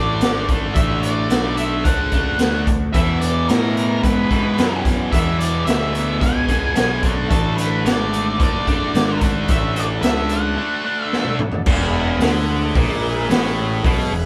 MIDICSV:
0, 0, Header, 1, 6, 480
1, 0, Start_track
1, 0, Tempo, 545455
1, 671, Time_signature, 4, 2, 24, 8
1, 12544, End_track
2, 0, Start_track
2, 0, Title_t, "Lead electric guitar"
2, 0, Program_c, 0, 29
2, 0, Note_on_c, 0, 74, 71
2, 401, Note_off_c, 0, 74, 0
2, 648, Note_on_c, 0, 76, 81
2, 892, Note_off_c, 0, 76, 0
2, 895, Note_on_c, 0, 74, 87
2, 1378, Note_off_c, 0, 74, 0
2, 1382, Note_on_c, 0, 76, 84
2, 1619, Note_on_c, 0, 78, 71
2, 1633, Note_off_c, 0, 76, 0
2, 2308, Note_off_c, 0, 78, 0
2, 2578, Note_on_c, 0, 76, 98
2, 2815, Note_off_c, 0, 76, 0
2, 2818, Note_on_c, 0, 74, 95
2, 3046, Note_off_c, 0, 74, 0
2, 3064, Note_on_c, 0, 70, 73
2, 3545, Note_off_c, 0, 70, 0
2, 3549, Note_on_c, 0, 71, 63
2, 4233, Note_off_c, 0, 71, 0
2, 4503, Note_on_c, 0, 76, 76
2, 4738, Note_off_c, 0, 76, 0
2, 4741, Note_on_c, 0, 74, 81
2, 4973, Note_off_c, 0, 74, 0
2, 4976, Note_on_c, 0, 76, 81
2, 5463, Note_on_c, 0, 80, 85
2, 5477, Note_off_c, 0, 76, 0
2, 6151, Note_off_c, 0, 80, 0
2, 6423, Note_on_c, 0, 69, 87
2, 6649, Note_off_c, 0, 69, 0
2, 6652, Note_on_c, 0, 71, 80
2, 6908, Note_off_c, 0, 71, 0
2, 6910, Note_on_c, 0, 74, 91
2, 7356, Note_off_c, 0, 74, 0
2, 7403, Note_on_c, 0, 74, 83
2, 8081, Note_off_c, 0, 74, 0
2, 8364, Note_on_c, 0, 76, 90
2, 8588, Note_off_c, 0, 76, 0
2, 8591, Note_on_c, 0, 74, 77
2, 8656, Note_off_c, 0, 74, 0
2, 8821, Note_on_c, 0, 76, 91
2, 9073, Note_off_c, 0, 76, 0
2, 9077, Note_on_c, 0, 78, 95
2, 9720, Note_off_c, 0, 78, 0
2, 9720, Note_on_c, 0, 76, 95
2, 9999, Note_off_c, 0, 76, 0
2, 12544, End_track
3, 0, Start_track
3, 0, Title_t, "Tonewheel organ"
3, 0, Program_c, 1, 16
3, 0, Note_on_c, 1, 62, 56
3, 0, Note_on_c, 1, 66, 61
3, 0, Note_on_c, 1, 69, 52
3, 0, Note_on_c, 1, 74, 58
3, 2548, Note_off_c, 1, 66, 0
3, 2549, Note_off_c, 1, 62, 0
3, 2550, Note_off_c, 1, 74, 0
3, 2551, Note_off_c, 1, 69, 0
3, 2594, Note_on_c, 1, 64, 57
3, 2596, Note_on_c, 1, 59, 56
3, 2596, Note_on_c, 1, 68, 63
3, 6156, Note_off_c, 1, 64, 0
3, 6157, Note_off_c, 1, 59, 0
3, 6157, Note_off_c, 1, 68, 0
3, 6168, Note_on_c, 1, 66, 60
3, 6172, Note_on_c, 1, 57, 66
3, 6174, Note_on_c, 1, 62, 60
3, 6180, Note_on_c, 1, 69, 55
3, 10225, Note_off_c, 1, 66, 0
3, 10227, Note_off_c, 1, 57, 0
3, 10228, Note_off_c, 1, 62, 0
3, 10231, Note_off_c, 1, 69, 0
3, 10268, Note_on_c, 1, 65, 60
3, 10273, Note_on_c, 1, 57, 61
3, 10273, Note_on_c, 1, 60, 63
3, 10275, Note_on_c, 1, 69, 66
3, 10429, Note_off_c, 1, 65, 0
3, 10429, Note_on_c, 1, 68, 69
3, 10430, Note_on_c, 1, 71, 74
3, 10431, Note_off_c, 1, 60, 0
3, 10431, Note_on_c, 1, 56, 75
3, 10432, Note_off_c, 1, 57, 0
3, 10433, Note_off_c, 1, 69, 0
3, 10433, Note_on_c, 1, 64, 70
3, 12544, Note_off_c, 1, 56, 0
3, 12544, Note_off_c, 1, 64, 0
3, 12544, Note_off_c, 1, 68, 0
3, 12544, Note_off_c, 1, 71, 0
3, 12544, End_track
4, 0, Start_track
4, 0, Title_t, "Distorted electric guitar"
4, 0, Program_c, 2, 30
4, 0, Note_on_c, 2, 50, 59
4, 0, Note_on_c, 2, 57, 72
4, 0, Note_on_c, 2, 62, 81
4, 416, Note_off_c, 2, 62, 0
4, 420, Note_off_c, 2, 50, 0
4, 426, Note_off_c, 2, 57, 0
4, 431, Note_on_c, 2, 50, 69
4, 443, Note_on_c, 2, 57, 86
4, 458, Note_on_c, 2, 62, 85
4, 1615, Note_off_c, 2, 50, 0
4, 1621, Note_off_c, 2, 57, 0
4, 1629, Note_off_c, 2, 62, 0
4, 1630, Note_on_c, 2, 50, 74
4, 1643, Note_on_c, 2, 57, 81
4, 1657, Note_on_c, 2, 62, 78
4, 1855, Note_off_c, 2, 50, 0
4, 1862, Note_off_c, 2, 57, 0
4, 1863, Note_off_c, 2, 62, 0
4, 1873, Note_on_c, 2, 62, 80
4, 1887, Note_on_c, 2, 57, 67
4, 1901, Note_on_c, 2, 50, 64
4, 2337, Note_off_c, 2, 62, 0
4, 2344, Note_off_c, 2, 57, 0
4, 2351, Note_off_c, 2, 50, 0
4, 2584, Note_on_c, 2, 40, 80
4, 2594, Note_on_c, 2, 47, 86
4, 2608, Note_on_c, 2, 52, 95
4, 3771, Note_off_c, 2, 40, 0
4, 3775, Note_off_c, 2, 52, 0
4, 3776, Note_off_c, 2, 47, 0
4, 3786, Note_on_c, 2, 52, 83
4, 3801, Note_on_c, 2, 47, 76
4, 3813, Note_on_c, 2, 40, 63
4, 4013, Note_off_c, 2, 52, 0
4, 4016, Note_off_c, 2, 40, 0
4, 4020, Note_off_c, 2, 47, 0
4, 4027, Note_on_c, 2, 40, 63
4, 4040, Note_on_c, 2, 47, 66
4, 4054, Note_on_c, 2, 52, 66
4, 4493, Note_off_c, 2, 40, 0
4, 4500, Note_off_c, 2, 47, 0
4, 4504, Note_on_c, 2, 40, 80
4, 4507, Note_off_c, 2, 52, 0
4, 4516, Note_on_c, 2, 47, 86
4, 4528, Note_on_c, 2, 52, 97
4, 5685, Note_off_c, 2, 52, 0
4, 5692, Note_off_c, 2, 40, 0
4, 5696, Note_on_c, 2, 52, 88
4, 5698, Note_off_c, 2, 47, 0
4, 5710, Note_on_c, 2, 47, 67
4, 5724, Note_on_c, 2, 40, 66
4, 5925, Note_off_c, 2, 40, 0
4, 5928, Note_off_c, 2, 52, 0
4, 5935, Note_off_c, 2, 47, 0
4, 5936, Note_on_c, 2, 40, 62
4, 5955, Note_on_c, 2, 47, 67
4, 5964, Note_on_c, 2, 52, 73
4, 6168, Note_off_c, 2, 40, 0
4, 6173, Note_off_c, 2, 47, 0
4, 6177, Note_on_c, 2, 50, 78
4, 6182, Note_off_c, 2, 52, 0
4, 6199, Note_on_c, 2, 57, 83
4, 6203, Note_on_c, 2, 62, 85
4, 7370, Note_off_c, 2, 50, 0
4, 7374, Note_on_c, 2, 50, 76
4, 7387, Note_off_c, 2, 57, 0
4, 7390, Note_on_c, 2, 57, 73
4, 7395, Note_off_c, 2, 62, 0
4, 7399, Note_on_c, 2, 62, 70
4, 7607, Note_off_c, 2, 50, 0
4, 7615, Note_off_c, 2, 57, 0
4, 7620, Note_off_c, 2, 62, 0
4, 7634, Note_on_c, 2, 62, 82
4, 7644, Note_on_c, 2, 57, 69
4, 7655, Note_on_c, 2, 50, 69
4, 8091, Note_off_c, 2, 50, 0
4, 8098, Note_off_c, 2, 62, 0
4, 8102, Note_on_c, 2, 50, 79
4, 8103, Note_off_c, 2, 57, 0
4, 8117, Note_on_c, 2, 57, 74
4, 8128, Note_on_c, 2, 62, 88
4, 9285, Note_off_c, 2, 50, 0
4, 9295, Note_off_c, 2, 57, 0
4, 9295, Note_on_c, 2, 50, 72
4, 9305, Note_off_c, 2, 62, 0
4, 9306, Note_on_c, 2, 57, 74
4, 9318, Note_on_c, 2, 62, 75
4, 9528, Note_off_c, 2, 50, 0
4, 9534, Note_off_c, 2, 57, 0
4, 9537, Note_off_c, 2, 62, 0
4, 9548, Note_on_c, 2, 62, 86
4, 9555, Note_on_c, 2, 57, 63
4, 9570, Note_on_c, 2, 50, 55
4, 10015, Note_off_c, 2, 62, 0
4, 10018, Note_off_c, 2, 57, 0
4, 10026, Note_off_c, 2, 50, 0
4, 10273, Note_on_c, 2, 40, 102
4, 10744, Note_off_c, 2, 40, 0
4, 10759, Note_on_c, 2, 50, 99
4, 11227, Note_off_c, 2, 50, 0
4, 11238, Note_on_c, 2, 46, 101
4, 11706, Note_off_c, 2, 46, 0
4, 11710, Note_on_c, 2, 45, 88
4, 12181, Note_off_c, 2, 45, 0
4, 12194, Note_on_c, 2, 47, 103
4, 12423, Note_off_c, 2, 47, 0
4, 12426, Note_on_c, 2, 40, 72
4, 12544, Note_off_c, 2, 40, 0
4, 12544, End_track
5, 0, Start_track
5, 0, Title_t, "Picked electric bass"
5, 0, Program_c, 3, 34
5, 0, Note_on_c, 3, 33, 72
5, 172, Note_off_c, 3, 33, 0
5, 181, Note_on_c, 3, 32, 75
5, 651, Note_off_c, 3, 32, 0
5, 661, Note_on_c, 3, 33, 75
5, 1131, Note_off_c, 3, 33, 0
5, 1138, Note_on_c, 3, 35, 76
5, 1609, Note_off_c, 3, 35, 0
5, 1627, Note_on_c, 3, 37, 72
5, 2089, Note_off_c, 3, 37, 0
5, 2094, Note_on_c, 3, 38, 82
5, 2567, Note_off_c, 3, 38, 0
5, 2585, Note_on_c, 3, 40, 74
5, 3052, Note_off_c, 3, 40, 0
5, 3078, Note_on_c, 3, 45, 86
5, 3539, Note_off_c, 3, 45, 0
5, 3544, Note_on_c, 3, 44, 76
5, 4012, Note_off_c, 3, 44, 0
5, 4035, Note_on_c, 3, 42, 81
5, 4497, Note_off_c, 3, 42, 0
5, 4506, Note_on_c, 3, 40, 75
5, 4973, Note_off_c, 3, 40, 0
5, 4987, Note_on_c, 3, 38, 83
5, 5453, Note_off_c, 3, 38, 0
5, 5460, Note_on_c, 3, 37, 74
5, 5930, Note_off_c, 3, 37, 0
5, 5946, Note_on_c, 3, 35, 79
5, 6413, Note_off_c, 3, 35, 0
5, 6427, Note_on_c, 3, 33, 74
5, 6894, Note_off_c, 3, 33, 0
5, 6905, Note_on_c, 3, 32, 76
5, 7373, Note_off_c, 3, 32, 0
5, 7390, Note_on_c, 3, 30, 80
5, 7856, Note_off_c, 3, 30, 0
5, 7870, Note_on_c, 3, 32, 82
5, 8336, Note_off_c, 3, 32, 0
5, 8350, Note_on_c, 3, 33, 71
5, 8812, Note_off_c, 3, 33, 0
5, 8818, Note_on_c, 3, 37, 85
5, 9290, Note_off_c, 3, 37, 0
5, 10267, Note_on_c, 3, 28, 96
5, 10714, Note_off_c, 3, 28, 0
5, 10727, Note_on_c, 3, 38, 87
5, 11184, Note_off_c, 3, 38, 0
5, 11221, Note_on_c, 3, 34, 87
5, 11671, Note_off_c, 3, 34, 0
5, 11701, Note_on_c, 3, 33, 93
5, 12150, Note_off_c, 3, 33, 0
5, 12182, Note_on_c, 3, 35, 91
5, 12407, Note_off_c, 3, 35, 0
5, 12416, Note_on_c, 3, 28, 81
5, 12544, Note_off_c, 3, 28, 0
5, 12544, End_track
6, 0, Start_track
6, 0, Title_t, "Drums"
6, 183, Note_on_c, 9, 42, 77
6, 199, Note_on_c, 9, 38, 96
6, 271, Note_off_c, 9, 42, 0
6, 287, Note_off_c, 9, 38, 0
6, 428, Note_on_c, 9, 42, 60
6, 429, Note_on_c, 9, 36, 84
6, 516, Note_off_c, 9, 42, 0
6, 517, Note_off_c, 9, 36, 0
6, 664, Note_on_c, 9, 42, 82
6, 668, Note_on_c, 9, 36, 110
6, 752, Note_off_c, 9, 42, 0
6, 756, Note_off_c, 9, 36, 0
6, 905, Note_on_c, 9, 42, 56
6, 993, Note_off_c, 9, 42, 0
6, 1145, Note_on_c, 9, 42, 77
6, 1161, Note_on_c, 9, 38, 102
6, 1233, Note_off_c, 9, 42, 0
6, 1249, Note_off_c, 9, 38, 0
6, 1384, Note_on_c, 9, 42, 59
6, 1472, Note_off_c, 9, 42, 0
6, 1629, Note_on_c, 9, 36, 104
6, 1629, Note_on_c, 9, 42, 78
6, 1717, Note_off_c, 9, 36, 0
6, 1717, Note_off_c, 9, 42, 0
6, 1863, Note_on_c, 9, 42, 55
6, 1867, Note_on_c, 9, 36, 75
6, 1951, Note_off_c, 9, 42, 0
6, 1955, Note_off_c, 9, 36, 0
6, 2101, Note_on_c, 9, 42, 78
6, 2117, Note_on_c, 9, 38, 100
6, 2189, Note_off_c, 9, 42, 0
6, 2205, Note_off_c, 9, 38, 0
6, 2350, Note_on_c, 9, 36, 97
6, 2350, Note_on_c, 9, 42, 65
6, 2438, Note_off_c, 9, 36, 0
6, 2438, Note_off_c, 9, 42, 0
6, 2588, Note_on_c, 9, 42, 75
6, 2590, Note_on_c, 9, 36, 105
6, 2676, Note_off_c, 9, 42, 0
6, 2678, Note_off_c, 9, 36, 0
6, 2829, Note_on_c, 9, 42, 58
6, 2917, Note_off_c, 9, 42, 0
6, 3070, Note_on_c, 9, 42, 67
6, 3086, Note_on_c, 9, 38, 91
6, 3158, Note_off_c, 9, 42, 0
6, 3174, Note_off_c, 9, 38, 0
6, 3318, Note_on_c, 9, 42, 58
6, 3406, Note_off_c, 9, 42, 0
6, 3552, Note_on_c, 9, 36, 92
6, 3554, Note_on_c, 9, 42, 72
6, 3640, Note_off_c, 9, 36, 0
6, 3642, Note_off_c, 9, 42, 0
6, 3790, Note_on_c, 9, 36, 72
6, 3792, Note_on_c, 9, 42, 47
6, 3878, Note_off_c, 9, 36, 0
6, 3880, Note_off_c, 9, 42, 0
6, 4030, Note_on_c, 9, 42, 66
6, 4045, Note_on_c, 9, 38, 108
6, 4118, Note_off_c, 9, 42, 0
6, 4133, Note_off_c, 9, 38, 0
6, 4270, Note_on_c, 9, 36, 88
6, 4273, Note_on_c, 9, 42, 61
6, 4358, Note_off_c, 9, 36, 0
6, 4361, Note_off_c, 9, 42, 0
6, 4511, Note_on_c, 9, 36, 99
6, 4516, Note_on_c, 9, 42, 82
6, 4599, Note_off_c, 9, 36, 0
6, 4604, Note_off_c, 9, 42, 0
6, 4755, Note_on_c, 9, 42, 60
6, 4843, Note_off_c, 9, 42, 0
6, 4989, Note_on_c, 9, 42, 76
6, 5005, Note_on_c, 9, 38, 93
6, 5077, Note_off_c, 9, 42, 0
6, 5093, Note_off_c, 9, 38, 0
6, 5234, Note_on_c, 9, 42, 58
6, 5322, Note_off_c, 9, 42, 0
6, 5468, Note_on_c, 9, 36, 99
6, 5474, Note_on_c, 9, 42, 73
6, 5556, Note_off_c, 9, 36, 0
6, 5562, Note_off_c, 9, 42, 0
6, 5707, Note_on_c, 9, 36, 78
6, 5709, Note_on_c, 9, 42, 62
6, 5795, Note_off_c, 9, 36, 0
6, 5797, Note_off_c, 9, 42, 0
6, 5944, Note_on_c, 9, 42, 79
6, 5960, Note_on_c, 9, 38, 102
6, 6032, Note_off_c, 9, 42, 0
6, 6048, Note_off_c, 9, 38, 0
6, 6185, Note_on_c, 9, 42, 71
6, 6187, Note_on_c, 9, 36, 90
6, 6273, Note_off_c, 9, 42, 0
6, 6275, Note_off_c, 9, 36, 0
6, 6429, Note_on_c, 9, 36, 101
6, 6431, Note_on_c, 9, 42, 80
6, 6517, Note_off_c, 9, 36, 0
6, 6519, Note_off_c, 9, 42, 0
6, 6671, Note_on_c, 9, 42, 60
6, 6759, Note_off_c, 9, 42, 0
6, 6915, Note_on_c, 9, 42, 77
6, 6931, Note_on_c, 9, 38, 101
6, 7003, Note_off_c, 9, 42, 0
6, 7019, Note_off_c, 9, 38, 0
6, 7158, Note_on_c, 9, 42, 58
6, 7246, Note_off_c, 9, 42, 0
6, 7391, Note_on_c, 9, 36, 110
6, 7393, Note_on_c, 9, 42, 71
6, 7479, Note_off_c, 9, 36, 0
6, 7481, Note_off_c, 9, 42, 0
6, 7633, Note_on_c, 9, 36, 74
6, 7634, Note_on_c, 9, 42, 50
6, 7721, Note_off_c, 9, 36, 0
6, 7722, Note_off_c, 9, 42, 0
6, 7873, Note_on_c, 9, 42, 64
6, 7889, Note_on_c, 9, 38, 91
6, 7961, Note_off_c, 9, 42, 0
6, 7977, Note_off_c, 9, 38, 0
6, 8106, Note_on_c, 9, 42, 66
6, 8110, Note_on_c, 9, 36, 90
6, 8194, Note_off_c, 9, 42, 0
6, 8198, Note_off_c, 9, 36, 0
6, 8345, Note_on_c, 9, 42, 73
6, 8351, Note_on_c, 9, 36, 108
6, 8433, Note_off_c, 9, 42, 0
6, 8439, Note_off_c, 9, 36, 0
6, 8588, Note_on_c, 9, 42, 53
6, 8676, Note_off_c, 9, 42, 0
6, 8823, Note_on_c, 9, 42, 70
6, 8838, Note_on_c, 9, 38, 97
6, 8911, Note_off_c, 9, 42, 0
6, 8926, Note_off_c, 9, 38, 0
6, 9058, Note_on_c, 9, 42, 58
6, 9146, Note_off_c, 9, 42, 0
6, 9794, Note_on_c, 9, 38, 51
6, 9882, Note_off_c, 9, 38, 0
6, 9897, Note_on_c, 9, 47, 57
6, 9985, Note_off_c, 9, 47, 0
6, 10024, Note_on_c, 9, 45, 85
6, 10112, Note_off_c, 9, 45, 0
6, 10134, Note_on_c, 9, 43, 72
6, 10222, Note_off_c, 9, 43, 0
6, 10260, Note_on_c, 9, 49, 124
6, 10264, Note_on_c, 9, 36, 103
6, 10348, Note_off_c, 9, 49, 0
6, 10352, Note_off_c, 9, 36, 0
6, 10739, Note_on_c, 9, 46, 60
6, 10755, Note_on_c, 9, 38, 109
6, 10827, Note_off_c, 9, 46, 0
6, 10843, Note_off_c, 9, 38, 0
6, 11224, Note_on_c, 9, 36, 108
6, 11224, Note_on_c, 9, 46, 56
6, 11312, Note_off_c, 9, 36, 0
6, 11312, Note_off_c, 9, 46, 0
6, 11707, Note_on_c, 9, 46, 55
6, 11723, Note_on_c, 9, 38, 101
6, 11795, Note_off_c, 9, 46, 0
6, 11811, Note_off_c, 9, 38, 0
6, 11844, Note_on_c, 9, 38, 34
6, 11932, Note_off_c, 9, 38, 0
6, 12183, Note_on_c, 9, 36, 100
6, 12187, Note_on_c, 9, 46, 55
6, 12271, Note_off_c, 9, 36, 0
6, 12275, Note_off_c, 9, 46, 0
6, 12544, End_track
0, 0, End_of_file